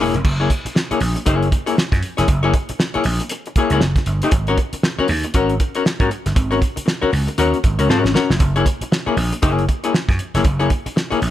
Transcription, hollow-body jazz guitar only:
0.00 A#3 E4 G#4 C#5
0.15 muted hollow-body jazz guitar stroke
0.26 muted hollow-body jazz guitar stroke
0.40 A#3 E4 G#4 C#5
0.51 muted hollow-body jazz guitar stroke
0.66 muted hollow-body jazz guitar stroke
0.75 muted hollow-body jazz guitar stroke
0.91 A#3 E4 G#4 C#5
1.00 muted hollow-body jazz guitar stroke
1.16 muted hollow-body jazz guitar stroke
1.26 A#3 E4 G#4 C#5
1.52 muted hollow-body jazz guitar stroke
1.66 A#3 E4 G#4 C#5
1.77 muted hollow-body jazz guitar stroke
1.92 muted hollow-body jazz guitar stroke
2.17 A#3 E4 G#4 C#5
2.28 muted hollow-body jazz guitar stroke
2.43 A#3 E4 G#4 C#5
2.54 muted hollow-body jazz guitar stroke
2.70 muted hollow-body jazz guitar stroke
2.79 muted hollow-body jazz guitar stroke
2.94 A#3 E4 G#4 C#5
3.05 muted hollow-body jazz guitar stroke
3.21 muted hollow-body jazz guitar stroke
3.31 muted hollow-body jazz guitar stroke
3.47 muted hollow-body jazz guitar stroke
3.57 A#3 E4 G#4 C#5
3.72 A#3 E4 G#4 C#5
3.82 muted hollow-body jazz guitar stroke
3.98 muted hollow-body jazz guitar stroke
4.23 A#3 E4 G#4 C#5
4.32 muted hollow-body jazz guitar stroke
4.48 C#4 F#4 A#4 C#5
4.58 muted hollow-body jazz guitar stroke
4.74 muted hollow-body jazz guitar stroke
4.84 muted hollow-body jazz guitar stroke
4.99 C#4 F#4 A#4 C#5
5.08 muted hollow-body jazz guitar stroke
5.25 muted hollow-body jazz guitar stroke
5.35 C#4 F#4 A#4 C#5
5.60 muted hollow-body jazz guitar stroke
5.75 C#4 F#4 A#4 C#5
5.85 muted hollow-body jazz guitar stroke
6.00 C#4 F#4 A#4 C#5
6.10 muted hollow-body jazz guitar stroke
6.26 muted hollow-body jazz guitar stroke
6.35 muted hollow-body jazz guitar stroke
6.51 C#4 F#4 A#4 C#5
6.61 muted hollow-body jazz guitar stroke
6.76 muted hollow-body jazz guitar stroke
6.86 muted hollow-body jazz guitar stroke
7.02 C#4 F#4 A#4 C#5
7.12 muted hollow-body jazz guitar stroke
7.28 muted hollow-body jazz guitar stroke
7.38 C#4 F#4 A#4 C#5
7.64 muted hollow-body jazz guitar stroke
7.79 C#4 F#4 A#4 C#5
7.89 C#4 F#4 A#4 C#5
8.04 muted hollow-body jazz guitar stroke
8.14 C#4 F#4 A#4 C#5
8.31 muted hollow-body jazz guitar stroke
8.41 muted hollow-body jazz guitar stroke
8.56 A#3 E4 G#4 C#5
8.66 muted hollow-body jazz guitar stroke
8.82 muted hollow-body jazz guitar stroke
8.92 muted hollow-body jazz guitar stroke
9.06 A#3 E4 G#4 C#5
9.17 muted hollow-body jazz guitar stroke
9.33 muted hollow-body jazz guitar stroke
9.42 A#3 E4 G#4 C#5
9.69 muted hollow-body jazz guitar stroke
9.84 A#3 E4 G#4 C#5
9.94 muted hollow-body jazz guitar stroke
10.09 muted hollow-body jazz guitar stroke
10.35 A#3 E4 G#4 C#5
10.45 muted hollow-body jazz guitar stroke
10.59 A#3 E4 G#4 C#5
10.70 muted hollow-body jazz guitar stroke
10.86 muted hollow-body jazz guitar stroke
10.96 muted hollow-body jazz guitar stroke
11.11 A#3 E4 G#4 C#5
11.21 muted hollow-body jazz guitar stroke

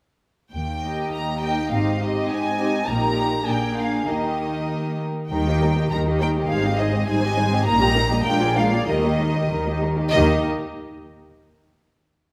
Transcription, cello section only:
0.54 D#2
1.14 D#2
1.73 G#2
2.30 G#2
2.88 A#2
3.48 A#2
4.08 D#3
5.32 D#3
5.92 D#3
6.51 G#2
7.08 G#2
7.66 A#2
8.26 A#2
8.88 D#3
9.50 D#3
10.12 D#3

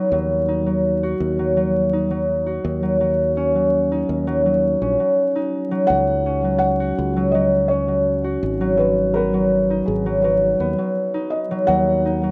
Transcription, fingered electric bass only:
0.12 D#2
1.20 D#2
2.65 D#2
4.09 D#2
4.82 A#1
5.90 C#2
6.98 C#2
8.43 G#1
9.88 G#1
10.60 D#2
11.68 D#2

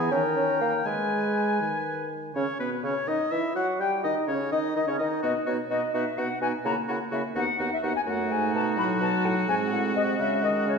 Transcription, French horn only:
Already playing: E3
0.12 D#3
0.86 G#3
1.61 D#3
2.36 C#4
2.60 B3
2.84 C#4
3.08 D#4
3.32 E4
3.56 F#4
3.80 G4
4.05 D#4
4.29 C#4
4.52 D#4
4.76 D#4
4.88 C#4
5.00 D#4
5.24 B3
5.47 B3
5.71 B3
5.95 B3
6.19 B3
6.42 B3
6.66 A#3
6.89 A#3
7.13 A#3
7.36 B3
7.60 B3
7.83 B3
8.07 A3
8.77 F#3
9.48 G#3
10.19 G#3

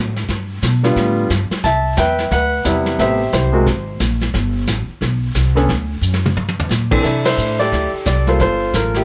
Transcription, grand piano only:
0.83 D3 G3 B3 F4
1.64 E5 A5
1.98 B4 E5 G5
2.32 B4 F#5
2.65 C3 G3 B3 E4
2.99 C3 A3 B3 G4 C5 E5
3.33 E4 G4 C5
3.53 C3 G#3 A#3 F#4
5.55 D3 B3 C#4 A4
6.91 E3 C4 D4 A4
7.03 D4 E4 A4
7.26 E4 A4 C5
7.59 G4 A4 D5
8.07 D5
8.27 G3 A#3 F4 A4 C5
8.41 F4 A4 C5
8.75 A#4
8.97 A#3 E4 G4

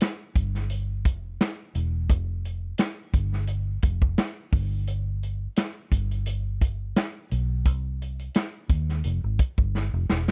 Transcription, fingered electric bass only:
0.36 G1
1.06 F1
1.75 E1
2.10 F1
3.14 G1
3.83 F1
4.53 G1
5.92 G1
7.32 B1
7.66 C2
8.70 D#2
9.05 F1
9.24 G#1
9.58 G1
9.93 F1
10.10 E1

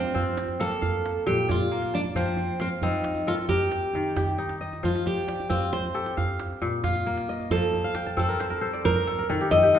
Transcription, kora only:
Already playing: F3 D#4 F4 G4 A4 A#4 F5
0.14 C4 F4
0.60 A#3 A4
0.82 F5
1.26 A#2
1.49 D5
1.72 A#3
1.94 A5
2.16 F3
2.60 F5
2.83 C4 F4
3.27 A4 A#4
3.49 A#4
3.95 D#3
4.16 G4
4.38 D#4
4.61 D#5
4.83 F3
5.28 D5
5.49 C4
5.94 G4 A4
6.17 F5
6.62 A#2
6.84 F5
7.06 A#3
7.29 D#5
7.51 F3
7.84 F5
7.95 G5
8.06 A5
8.17 C4 A4
8.29 A#4
8.39 C5
8.50 A#4
8.61 A4 C5
8.73 D5
8.84 C5
8.96 A#4
9.07 A4
9.19 A#4
9.30 D#3 A4
9.41 G4
9.53 A4
9.63 G4
9.74 D#4 F4

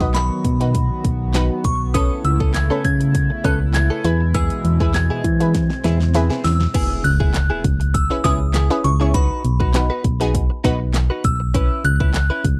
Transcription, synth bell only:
Already playing: D#6
0.14 B5
1.65 C#6
1.94 D#6
2.25 E6
2.55 G#6
2.85 G#6
3.45 F#6
3.75 G#6
4.35 E6
4.95 G#6
6.44 E6
7.04 F#6
7.94 E6
8.24 D#6
8.84 C#6
9.14 B5
11.25 E6
11.85 F#6

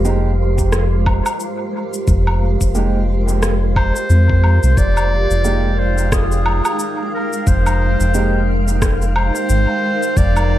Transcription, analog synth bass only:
Already playing: F1
2.08 F1
2.61 F1
4.10 F2
4.63 C2
4.77 F1
5.30 F1
7.47 F1
8.00 F1
9.50 G#1
10.17 F1

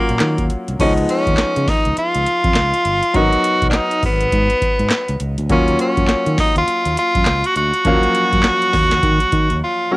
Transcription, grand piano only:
Already playing: F#3 A#3 C#4 F4
0.80 F3 G#3 B3 D#4
3.14 F#3 B3 D#4 A#4
5.49 F#3 A#3 C#4 F4
7.85 F3 A#3 C#4 F5
7.91 F#3
9.91 F#3 A#3 C#4 F#4

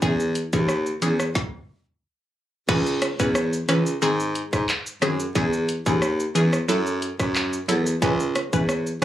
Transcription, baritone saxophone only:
0.02 E2
0.53 D#2
1.02 E2
2.69 C#2
3.20 E2
3.69 C#2
4.02 G#2
4.53 G#2
5.02 F#2
5.35 E2
5.86 D#2
6.36 E2
6.69 F#2
7.20 F#2
7.69 E2
8.02 C#2
8.53 E2

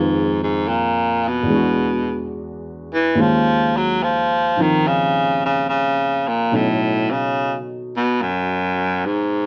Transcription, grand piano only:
Already playing: F2 D#3 G#3 F4 B4
1.43 E2 E3
1.49 G#3 D4
1.54 F#4
3.15 D#2 D#3 G#3 A#3 C#4
3.20 F4
4.57 D#3 F3 C4 D#4
6.51 B2 F#3 C#4 D#4 A4

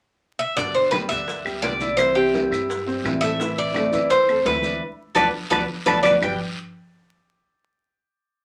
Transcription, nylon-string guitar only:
0.56 B2 D3 G3 B3 G4
0.91 B2 D3 G3 B3 G4
1.09 G3 B3 G4
1.27 muted nylon-string guitar stroke
1.45 G3 B3 G4
1.62 B2 D3 G3 B3 G4
1.97 C3 E3 G3 C4 E4
2.33 C3 E3 G3 C4 E4
2.51 G3 C4 E4
2.69 muted nylon-string guitar stroke
2.86 G3 C4 E4
3.04 C3 E3 G3 C4 E4
3.39 E3 A3 C4 E4
3.75 E3 A3 C4 E4
3.92 A3 C4 E4
4.10 muted nylon-string guitar stroke
4.28 A3 C4 E4
4.45 E3 A3 C4 E4
5.16 A3 B3 D4
5.51 A3 B3 D4
5.86 A3 B3 D4
6.04 A3 B3 D4
6.21 G2 B2 D3 G3 B3 G4

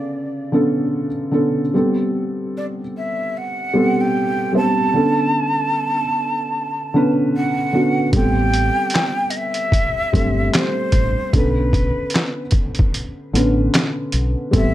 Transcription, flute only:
Already playing: D5
2.56 D5
2.96 E5
3.37 F#5
4.00 G5
4.56 A5
7.36 F#5
8.15 G5
9.30 D#5
9.36 E5
10.55 C5
11.35 B4
14.55 E5

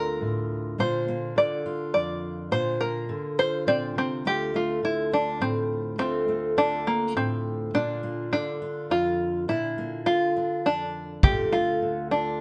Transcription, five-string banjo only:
Already playing: A#4
0.80 C5
1.38 D5
1.94 D5
2.52 C5
2.81 A#4
3.39 C5
3.68 C4 D5
3.98 C4
4.27 G4
4.56 F4
4.85 E4
5.13 D4
5.42 C4
5.99 C4
6.58 D4
6.87 A#3
7.17 C4
7.75 D4
8.33 D4
8.91 F4
9.49 E4
10.06 F4
10.66 D4
11.24 G4
11.53 F4
12.11 D4

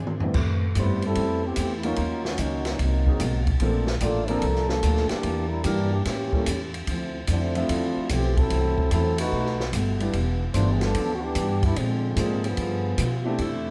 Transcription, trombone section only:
0.78 G3 B3 E4 C5
1.05 G3 C4 E4 A4
1.45 E3 B3 C4 G4
1.75 E4
1.83 A#3 C#4 D#4 F4
2.25 D#3 A#3 C#4 F#4
2.39 F#3 A#3 C#4 D#4
2.66 F#3 A#3 C#4 D#4
2.80 F#3 A#3 C4 D#4
4.02 A#3 F4 A4 D5
4.27 F3 D4 A4 A#4
4.68 F3 A#3 D4 A4
5.08 E3 A#3 D4 G4
5.48 G3 D4 E4 A#4
5.63 E3 A#3 D4 G4
5.90 E3 A#3 D4 G4
6.04 E3 A#3 C#4 G4
7.30 F3 A3 C4 D4
7.56 A3 C4 E4 F4
8.11 E3 A3 C4 G4
8.37 F#3 C4 E4 A4
8.92 F#3 C4 E4 A4
9.19 A3 D#4 F#4 B4
10.55 A3 D4 F4 C5
10.73 G#4
10.81 F3 B3 D4 A4
11.14 F#4
11.22 E3 B3 D4 G4
11.63 G3 B3 D4 E4
11.76 D3 F3 G#3 C4
12.45 D3 F3 B3 G#4

